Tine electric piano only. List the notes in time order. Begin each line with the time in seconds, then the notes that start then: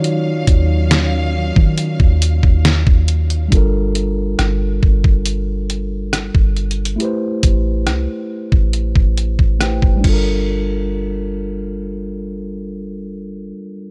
Already playing: D#3 D#4 F4 F#4 C#5
3.48 G3 D4
3.53 F4 A4
3.57 A#4
6.96 A3 E4
7.00 G4 B4
7.05 C5
9.59 A3 E4 G4 B4 G5
9.63 C5
9.96 G3
10.00 D4
10.05 F4
10.09 A4
10.13 A#4